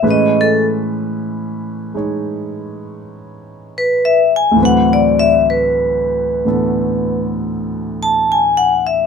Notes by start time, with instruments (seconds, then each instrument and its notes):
0.03 grand piano A2 E3 G#3 C#4 B4
0.10 vibraphone D#5
0.41 vibraphone A4
1.94 grand piano G#3 D#4 C#5
3.78 vibraphone B4
4.05 vibraphone E5
4.36 vibraphone G#5
4.51 grand piano D2 A2
4.56 grand piano E3 F#3
4.61 grand piano C4 B4
4.65 vibraphone F#5
4.93 vibraphone D5
5.19 vibraphone E5
5.50 vibraphone B4
6.45 grand piano A2 D3 E3 B3 A4
8.03 vibraphone A5
8.32 vibraphone G#5
8.57 vibraphone F#5
8.87 vibraphone E5